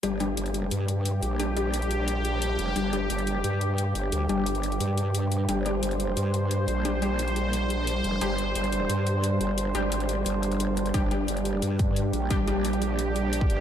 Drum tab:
HH |x-x-xxx-x-x-x-x-|x-x-xxx-x-x-x-x-|x-x-xxx-x-x-x-x-|x-x-xxxxx-x-x-x-|
BD |----------------|----------------|----------------|----------------|

HH |x-x-xxx-x-x-x-x-|x-x-xxx-x-x-x-x-|x-x-xxx-x-x-x-x-|x-x-xxx-x-xxx-xx|
BD |----------------|----------------|----------------|----------------|

HH |x-x-xxx-x-x-x-x-|x-x-xxx-x-x-x-x-|
BD |o---------o-----|o------------o--|